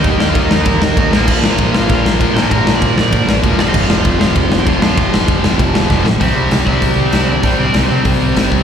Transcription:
Already playing: D#3 G3 A#3 D#4 G4 G5
0.04 D#2, kick, ride
0.20 D#2, snare
0.28 F4 F5
0.34 D#2 D#3 G3 A#3 D#4, kick, ride
0.42 D#4 D#5
0.51 D#2, snare
0.65 D#2 A#3 A#4, kick, ride
0.81 D#2 A#3 A#4, snare
0.96 D#2 D#3 A#3 D#4, kick, ride
1.11 A#1 A#2 F3 A#3 D4, snare
1.15 A#4
1.21 C4 C5
1.28 A#1 D4 D5, kick, crash
1.43 A#1, snare
1.51 F4 F5
1.58 A#1 A#2 F3 A#3 D4, kick, ride
1.74 A#1 F4 F5, snare
1.89 A#1, kick, ride
2.05 A#1, snare
2.19 A#1 A#2 F3 A#3, kick, ride
2.35 A#2 F3 A#3 D4 G4 G5, snare
2.43 A4 A5
2.50 A#1 A#4 A#5, kick, ride
2.66 A#1, snare
2.75 D5 D6
2.80 A#1 A#2 F3 A#3 D4, kick, ride
2.97 A#1 D5 D6, snare
3.12 A#1, kick, ride
3.27 A#1, snare
3.42 E1 A#2 F3 A#3, kick, ride
3.57 F1 F2 C3 F3 A3 C4 D5, snare
3.62 D4
3.68 D#4 D#5
3.74 F1 F4 F5, kick, crash
3.89 F1, snare
3.97 F4 F5
4.03 F1 F2 C3 F3 A3 C4, kick, ride
4.20 F1 F4 F5, snare
4.35 F1, kick, ride
4.51 F1, snare
4.60 G4 G5
4.66 F1 F2 C3 F3 F4 F5, kick, ride
4.81 F2 C3 F3 A3 C4 F4 F5, snare
4.97 F1, kick, ride
5.13 F1, snare
5.28 F1 F2 C3 F3 A3 C4, kick, ride
5.44 F1, snare
5.59 F1, kick, ride
5.74 F1, snare
5.89 F1 F2 C3 F3, kick, snare
6.04 A#1, snare
6.20 C2 C3 G3 C4 E4 G4 E5, kick, open hi-hat
6.36 C2
6.51 C2, snare, open hi-hat
6.66 C2 C3 G3 C4 E4 E5, kick
6.82 C2, kick, open hi-hat
6.98 C2 C4 C5
7.11 C2 C3 G3 C4 E4 E5, snare, open hi-hat
7.28 C2 D4 D5
7.42 C2 C3 G3 C4 E4 G4 C5, kick, open hi-hat
7.58 C2 D4 D5
7.74 C2 C4 C5, snare, open hi-hat
7.89 C3 G3 C4
8.05 C2, kick, open hi-hat
8.22 C2
8.30 A#4
8.35 G1 C3 G3 C4, snare, open hi-hat
8.52 C2, kick

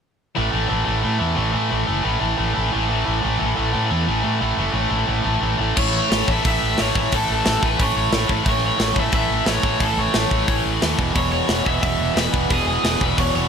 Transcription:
0.35 A1 A2 E3 A3
0.52 A1 A2 E3 A3
0.68 A1 A2 E3 A3
0.85 A1 A2 E3 A3
1.02 A2 E3 A3
1.19 E2 A2 E3 A3
1.35 A1 A2 E3 A3
1.53 A2 E3 A3
1.70 A1 A2 E3 A3
1.87 F#1 A2 E3 A3
2.04 A1 A2 E3 A3
2.20 A1 A2 E3 A3
2.37 A1 A2 E3 A3
2.53 A2 E3 A3
2.57 A1
2.72 A1 A2 E3 A3
2.89 A2 E3 A3
3.06 A1 A2 E3 A3
3.23 A1 A2 E3 A3
3.40 A1 A2 E3 A3
3.56 A1 A2 E3 A3
3.74 A2 E3 A3
3.91 E2 A2 E3 A3
4.07 A1 A2 E3 A3
4.23 A2 E3 A3
4.40 A1 A2 E3 A3
4.57 F#1 A2 E3 A3
4.73 A1 A2 E3 A3
4.90 A1 A2 E3 A3
5.07 A1 A2 E3 A3
5.25 A1 A2 E3 A3
5.40 A1 A2 E3 A3
5.57 A1 A2 E3 A3
5.76 A1 A2 E3 A3 C#5, kick, crash
5.96 C#5
6.09 A1 A2 E3 A3, snare, open hi-hat
6.27 A1 A2 E3 A3, kick
6.31 E5
6.43 A1 A2 E3 A3, kick, open hi-hat
6.48 E5
6.62 A1
6.78 A1 A2 E3 A3 C#5, snare, open hi-hat
6.95 A1 A2 E3 A3, kick
7.12 A1 A2 E3 A3 A4, kick, open hi-hat
7.30 A1 A4
7.45 A1 A2 E3 A3, snare, open hi-hat
7.62 A1 A2 E3 A3 B4, kick
7.79 A1 A2 E3 A3 C#5, kick, open hi-hat
7.97 A1 C#5
8.12 A1 A2 E3 A3, snare, open hi-hat
8.27 A1 A2 E3 A3, kick
8.45 A1 A2 E3 A3, kick, open hi-hat
8.50 C#5
8.65 C#5
8.79 A1 A2 E3 A3, snare, open hi-hat
8.96 A1 A2 E3 A3 E5, kick
9.12 A1 A2 E3 A3 E5, kick, open hi-hat
9.30 A1
9.46 A1 A2 E3 A3 C#5, snare, open hi-hat
9.63 A1 A2 E3 A3, kick
9.80 A1 A2 E3 A3 A4, kick, open hi-hat
9.97 A1 C#5
10.14 A1 A2 E3 A3, snare, open hi-hat
10.31 A1 A2 E3 A3, kick
10.47 A1 A2 E3 A3, kick, open hi-hat
10.66 A1
10.80 D#2 A2 E3 A3, snare, open hi-hat
10.97 E1 E2 B2 E3, kick
11.13 E1 E2 B2 E3, kick, open hi-hat
11.17 C#5
11.32 C#5
11.47 E1 E2 B2 E3, snare, open hi-hat
11.64 E1 E2 B2 E3 E5, kick
11.80 E1 E2 B2 E3 E5, kick, open hi-hat
11.99 E1
12.15 E1 E2 B2 E3 B4, snare, open hi-hat
12.33 E1 E2 B2 E3, kick
12.49 E1 E2 B2 E3 G#4, kick, open hi-hat
12.66 E1 G#4
12.84 E1 E2 B2 E3, snare, open hi-hat
13.01 E1 E2 B2 E3 B4, kick
13.18 E1 E2 B2 E3 C#5, kick, open hi-hat
13.35 E1 C#5

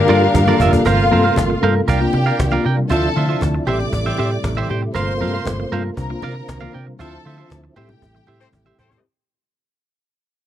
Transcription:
Already playing: D3 G3 A#3 D4 F4 G4 A#4 F5
0.08 G2 A#3 F4 A4 A#4 D5, muted conga
0.23 muted clean electric guitar stroke
0.34 G2, muted clean electric guitar stroke, cajon bass, cajon slap, high conga
0.46 A#3 F4 A4 A#4 D5, cajon slap, high conga
0.60 F1 G2 D3 F4 A#4 E5, cajon bass
0.72 A#3 F4 A4, muted clean electric guitar stroke, cajon bass
0.85 G1 G2 C3 D3 A3 A#3 F4 A#4 C5 F5, cajon bass, muted conga
0.99 F4 A4
1.11 G2 A#3 C4 F4 A4 A#4 C5 F5
1.24 A#4 C5 F5
1.36 G1 G2 D3, muted clean electric guitar stroke, cajon bass, cajon slap, high conga
1.50 muted clean electric guitar stroke
1.62 G2 A#3 C4 F4 A4 A#4 C5 F5
1.75 F4 A4, muted clean electric guitar stroke
1.88 C2 C3 G3 D4 G4 A#4 D5 F5 G5, cajon bass, muted conga
2.01 A#3 D4 F4, muted clean electric guitar stroke
2.13 C3, muted clean electric guitar stroke, muted conga, low conga
2.26 A#4 D5 F5
2.39 C2, muted clean electric guitar stroke, cajon bass, cajon slap, high conga
2.51 A#3 D4 F4 A#4 D5 F5, high conga
2.65 C3 A#4 D5 G5
2.77 C3 G3, muted clean electric guitar stroke
2.89 D2 F3 C4 E4 F4 A4 C5 E5 A5, cajon bass, muted conga
3.16 D3 A3 F4 C5 E5
3.29 C4 E4 F4 C5 E5
3.41 D2 D3 A3, muted clean electric guitar stroke, cajon bass, cajon slap, high conga
3.54 muted clean electric guitar stroke
3.67 A1 G3 A3 C4 E4 G4 C5 D5 E5 D6, low conga
3.80 E4 G4, muted clean electric guitar stroke, low conga
3.93 A1 E4 G4, muted clean electric guitar stroke, cajon bass, muted conga
4.06 A2 E3 G4 C5 E5
4.17 A2 C4 E4 G4 C5 E5, muted conga
4.32 muted clean electric guitar stroke
4.44 A1 E4 G4, muted clean electric guitar stroke, cajon bass, cajon slap, high conga
4.55 A2 E3 G4 C5 E5, high conga
4.69 A2 C4 E4 G4 C5 G5
4.82 muted clean electric guitar stroke
4.94 G1 G2 D3 A#3 F4 A#4 C5 F5 C6, cajon bass, muted conga
5.09 F4 A4
5.21 G2 A#3 C4 F4 A4 A#4 C5 F5
5.33 A#4 C5 F5
5.45 G1 G2 D3, muted clean electric guitar stroke, cajon bass, cajon slap, high conga
5.60 muted clean electric guitar stroke
5.72 G2 A#3 C4 F4 A4 A#4 C5 F5
5.84 F4 A4, muted clean electric guitar stroke
5.96 C2 C3 D3 G3 C4 A#4 A#5, cajon bass, muted conga
6.10 A#3 D4 F4, muted clean electric guitar stroke
6.22 C3 D4 F4 A#4 D5 F5, muted conga, low conga
6.36 muted clean electric guitar stroke
6.48 C2, muted clean electric guitar stroke, cajon bass, cajon slap, high conga
6.60 A#3 D4 F4 A#4 D5 F5, high conga
6.73 C3 A#4 D5 G5
6.87 C3 G3, muted clean electric guitar stroke
6.99 D2 F3 C4 E4 F4 A4 C5 E5 A5, cajon bass, muted conga
7.25 D3 A3 F4 C5 E5
7.38 C4 E4 F4 C5 E5
7.50 D2 D3 A3, cajon bass, cajon slap, high conga
7.64 muted clean electric guitar stroke, cajon slap
7.76 A2 C3 G3 A3 C4 E4 G4 C5 E5 G5, low conga
7.89 E4 G4, muted clean electric guitar stroke, low conga
8.02 A1 E4 G4, cajon bass, cajon slap
8.15 A2 E3, muted clean electric guitar stroke, cajon slap
8.27 A2 C4 E4 G4 C5 E5, muted conga
8.40 C4 G4 A4 C5, muted clean electric guitar stroke, cajon slap
8.53 A1, muted clean electric guitar stroke, cajon bass, cajon slap, high conga
8.65 C4 E4 G4 C5 E5, high conga
8.78 A2 E3 C4 G4 A4 C5 G5, cajon bass
8.91 C4 E4 G4, muted clean electric guitar stroke, cajon bass

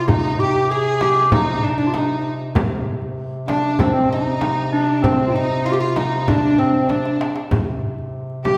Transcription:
Already playing: C3
0.01 F4
0.08 D#4, frame drum, darbuka dum
0.39 G4
0.55 darbuka ka
0.70 G#4
1.01 G4, darbuka tek, frame drum
1.32 D#4, darbuka dum, frame drum
1.63 D4
1.70 D#4
1.77 D4
1.87 F4
1.94 D#4, darbuka tek, frame drum
2.09 darbuka ka
2.25 darbuka ka
2.40 darbuka ka
2.55 C3, darbuka dum, frame drum
3.02 darbuka ka
3.33 darbuka ka
3.48 D4, darbuka tek, frame drum
3.79 C4, darbuka dum, frame drum
3.86 D4
3.93 C4
4.10 D#4
4.41 darbuka tek, frame drum
4.57 darbuka ka
4.72 D4, darbuka ka
4.88 darbuka ka
5.02 C4, frame drum, darbuka dum
5.27 F4
5.34 D#4
5.50 darbuka ka
5.65 F4, darbuka ka
5.72 G4
5.79 F4, darbuka ka
5.96 D#4, darbuka tek, frame drum
6.27 D4, darbuka dum, frame drum
6.58 C4, darbuka ka
6.89 D4, darbuka tek, frame drum
7.05 darbuka ka
7.21 darbuka tek
7.36 darbuka ka
7.51 C3, frame drum, darbuka dum
7.98 darbuka ka
8.30 darbuka ka
8.45 G4, frame drum

